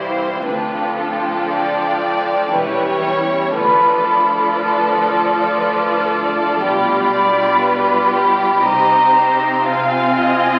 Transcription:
Already playing: C2 C3 E3 G3 E4 G4 C5 E5 F5
0.11 C4
0.44 D2 D3 F3 D4 F4 A4 B4 G5
0.79 D4
0.99 A4
1.15 F4
1.50 A4 D5
1.84 D5
2.19 F5
2.53 E1 E2 E3 G3 C#4 E4 B4 C#5
2.87 E4
3.03 C#5
3.21 E4 C#5
3.54 D2 D3 F3 F4 A4 B4 D5 B5
3.90 D4
4.05 A4
4.24 F4
4.57 B4 F5 A5
4.93 D5
5.07 A4
5.26 F5
5.58 F4 B4
5.94 D4
6.08 A4
6.28 A3
6.60 B1 B2 G3 G4 B5
6.97 D4
7.12 D5
7.31 G4
7.61 B4 F5
7.97 D5
8.12 G4
8.29 G5
8.62 C2 C3 C4 D#4 C5 D#5 A#5
8.99 C4
9.15 C5
9.33 G4 D#5
9.67 C3 F4 F5 G#5
10.02 C4
10.18 D#5
10.35 F4

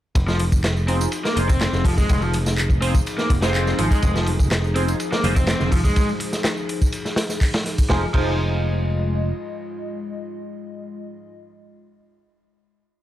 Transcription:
0.15 F1 F3 D#4 G#4, kick, ride, tambourine
0.28 F3, snare, tambourine
0.40 open hi-hat, ride
0.52 kick, tambourine
0.64 snare, clap, ride, tambourine
0.77 tambourine
0.88 C4 D#4 F4 G#4 C5, open hi-hat, ride
1.01 ride, tambourine
1.12 ride, tambourine
1.25 A#3, snare, tambourine
1.36 F1 D#4 F4 G#4 C5, open hi-hat, ride
1.49 C4, kick, open hi-hat, tambourine
1.61 snare, clap, ride, tambourine
1.73 F1, snare, tambourine
1.85 F3, kick, open hi-hat
1.98 G#3, kick, tambourine
2.09 F1, kick, ride, tambourine
2.21 F3, tambourine
2.33 open hi-hat, ride
2.46 snare, tambourine
2.58 clap, ride, tambourine
2.70 kick, tambourine
2.82 C4 D#4 F4 G#4 C5, open hi-hat, ride
2.95 kick, tambourine
3.06 ride, tambourine
3.18 A#3, snare, tambourine
3.30 F1, kick, open hi-hat, ride
3.42 C4 D#4 F4 G#4 C5, snare, tambourine
3.54 D#4 F4 G#4 C5, clap, ride, tambourine
3.67 snare, tambourine
3.78 G#1 F3 D#4 F4 G#4 C5, open hi-hat, ride
3.91 G#3, kick, open hi-hat, tambourine
4.02 F1, kick, ride, tambourine
4.15 F3, snare, tambourine
4.26 open hi-hat, ride, high conga
4.39 kick, tambourine, low conga
4.51 snare, clap, ride, tambourine
4.64 tambourine
4.75 C4 D#4 F4 G#4 C5, open hi-hat, ride, high bongo
4.88 ride, tambourine
5.00 ride, tambourine
5.12 A#3, snare, tambourine
5.23 F1 D#4 F4 G#4 C5, open hi-hat, ride, high conga, low conga
5.36 C4, kick, open hi-hat, tambourine, high bongo, high conga
5.47 snare, clap, ride, tambourine
5.59 F1, snare, tambourine, high conga, low conga
5.72 F3, kick, open hi-hat
5.84 G#3, kick, tambourine, high bongo
5.96 kick, ride, tambourine
6.09 tambourine
6.20 open hi-hat, ride
6.33 snare, tambourine
6.44 snare, clap, ride, tambourine
6.57 tambourine
6.69 open hi-hat, ride
6.82 kick, tambourine
6.92 ride, tambourine
7.05 snare, tambourine
7.16 snare, open hi-hat, ride
7.29 snare, tambourine
7.41 kick, clap, open hi-hat, tambourine
7.54 snare, ride, tambourine
7.66 snare, open hi-hat
7.78 kick, open hi-hat, tambourine
7.90 F1 F3 G#3 D#4 F4 G#4 C5 D#5, kick, snare
8.14 F1 F3 D#4 F4 G#4 C5, kick, crash

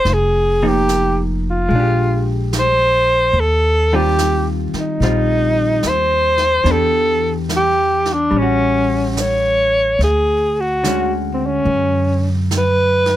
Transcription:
Already playing: C5
0.05 F1, brush sweep, snare
0.14 G#4
0.63 F3 A#3 D#4
0.68 G4
0.89 snare, hi-hat pedal
1.51 F4
1.69 A#1 G#3, brush sweep
1.75 D4
1.80 G4
2.53 snare, hi-hat pedal
2.59 C5
3.33 D#2, brush sweep
3.40 A4
3.93 D#3 G3 C4 F4 G4
4.18 snare, hi-hat pedal
4.73 muted upright bass stroke, snare
4.80 D#4
5.00 A#1 G3 C4, brush sweep, snare
5.04 F4
5.83 D#2, snare, hi-hat pedal
5.89 C5
6.38 snare
6.64 E2 E3 B3 D4, brush sweep, snare
6.69 G4 A4
7.49 snare, hi-hat pedal
7.56 G4
8.05 snare
8.13 D4
8.31 A1 G3, brush sweep
8.37 C#4
8.42 F#4
9.17 snare, hi-hat pedal
9.21 C#5
9.99 D2, brush sweep, snare
10.04 G#4
10.60 F#4
10.84 D3 G#3 C#4, snare, hi-hat pedal
10.89 F#4
11.34 C4
11.46 C#4
11.65 F#2, brush sweep
12.51 snare, hi-hat pedal
12.58 B4
13.06 snare

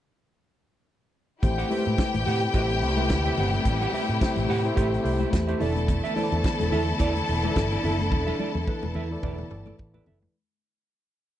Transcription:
1.43 A1 C3 G3 A3 E4 G4 C5 G5, muted clean electric guitar stroke, kick, closed hi-hat, muted conga, low conga
1.58 G4 C5 F#5, closed hi-hat, muted conga
1.70 A3 E4 G4 B4 C5 E5, open hi-hat, high conga
1.78 C5
1.86 A2, muted clean electric guitar stroke, closed hi-hat, high conga
1.98 muted clean electric guitar stroke, kick, snare, closed hi-hat
2.14 A1, muted clean electric guitar stroke, closed hi-hat, high conga
2.26 A2 G4 C5 F#5, open hi-hat, low conga
2.41 muted clean electric guitar stroke, closed hi-hat
2.53 A1 A3 E4 G4 C5 E5, kick, closed hi-hat
2.70 muted clean electric guitar stroke, closed hi-hat
2.82 C2, muted clean electric guitar stroke, open hi-hat
2.97 A3 E4 G4 B4 C5 E5, closed hi-hat, high conga
3.09 D2, kick, snare, closed hi-hat
3.25 G4 C5 E5, closed hi-hat
3.37 G1 G4 C5 F#5, open hi-hat, low conga
3.53 muted clean electric guitar stroke, closed hi-hat, high conga
3.65 A1, muted clean electric guitar stroke, kick, closed hi-hat, low conga
3.81 G4 C5 F#5, closed hi-hat, muted conga
3.93 G4 C5 E5, open hi-hat, high conga
4.08 A2, closed hi-hat, high conga
4.20 A3 E4 G4 C5, muted clean electric guitar stroke, kick, snare, closed hi-hat, muted conga
4.36 A1, muted clean electric guitar stroke, closed hi-hat, muted conga, high conga
4.49 A2 G4 C5 F#5, open hi-hat, low conga
4.64 A3 E4 G4 C5, muted clean electric guitar stroke, closed hi-hat
4.76 A1 A3 E4 G4 C5 E5, kick, closed hi-hat, muted conga
4.92 muted clean electric guitar stroke, closed hi-hat
5.03 C2 A3 E4 G4 C5, muted clean electric guitar stroke, open hi-hat
5.19 G4 C5 E5, closed hi-hat, high conga
5.32 E2, muted clean electric guitar stroke, kick, snare, closed hi-hat, muted conga
5.47 A3 E4 G4 C5 E5, closed hi-hat
5.60 E1 D3 E3 B3 E4 A4 D5 E5 A5, open hi-hat, low conga
5.76 muted clean electric guitar stroke, closed hi-hat, high conga
5.88 muted clean electric guitar stroke, kick, closed hi-hat, low conga
6.04 E4 A4 E5, closed hi-hat
6.16 E3 E4 A4 C5 D5, open hi-hat, high conga
6.24 D5
6.31 E2, muted clean electric guitar stroke, closed hi-hat, high conga
6.44 muted clean electric guitar stroke, kick, snare, closed hi-hat, muted conga
6.60 E1, muted clean electric guitar stroke, closed hi-hat, muted conga, high conga
6.72 E2 E4 A4 E5, open hi-hat, low conga
6.87 muted clean electric guitar stroke, closed hi-hat
6.99 E2 E3 E4 A4 D5, kick, closed hi-hat, muted conga
7.16 muted clean electric guitar stroke, closed hi-hat, muted conga
7.28 E1, muted clean electric guitar stroke, open hi-hat
7.43 E3 E4 A4 D5, closed hi-hat, high conga
7.56 G1, muted clean electric guitar stroke, kick, snare, closed hi-hat, muted conga
7.71 E4 A4 D5, closed hi-hat
7.84 F#1 E4 A4 E5, open hi-hat, low conga
8.00 closed hi-hat, high conga
8.11 E1, muted clean electric guitar stroke, kick, high tom, low conga
8.27 E4 A4 E5, high tom, muted conga
8.39 E4 A4 D5, high tom, high conga
8.55 E2, high tom, high conga
8.67 E3 E4 A4 B4, muted clean electric guitar stroke, kick
8.83 E1, muted clean electric guitar stroke, mid tom, muted conga, high conga
8.94 E2 E4 A4 E5, low conga
9.11 E3 E4 A4 D5, muted clean electric guitar stroke
9.23 E1 E3 E4 A4 D5, kick, mid tom, muted conga
9.38 muted clean electric guitar stroke, mid tom, muted conga
9.50 G1 E3 E4 A4 D5, muted clean electric guitar stroke, mid tom
9.66 E4 A4 D5, mid tom, high conga
9.79 A1, kick, muted conga
9.93 E3 E4 A4 B4 D5, floor tom, muted conga
10.06 F#1 E4 A4 E5, floor tom, low conga
10.22 floor tom, high conga

